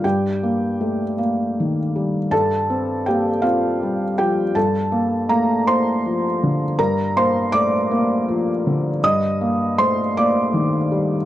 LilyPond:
<<
  \new Staff \with { instrumentName = "Felt piano" } { \time 6/8 \key ees \lydian \tempo 4. = 53 <g' g''>4. r4. | <a' a''>4 <g' g''>8 <f' f''>4 <g' g''>8 | <a' a''>4 <bes bes''>8 <c'' c'''>4. | <bes' bes''>8 <c'' c'''>8 <d'' d'''>2 |
<ees'' ees'''>4 <c'' c'''>8 <d'' d'''>4. | }
  \new Staff \with { instrumentName = "Felt piano" } { \clef bass \time 6/8 \key ees \lydian g,8 bes8 a8 bes8 ees8 g8 | g,8 c'8 bes8 c'8 g8 f8 | g,8 bes8 a8 bes8 f8 d8 | g,8 bes8 a8 bes8 f8 d8 |
g,8 bes8 a8 bes8 ees8 g8 | }
>>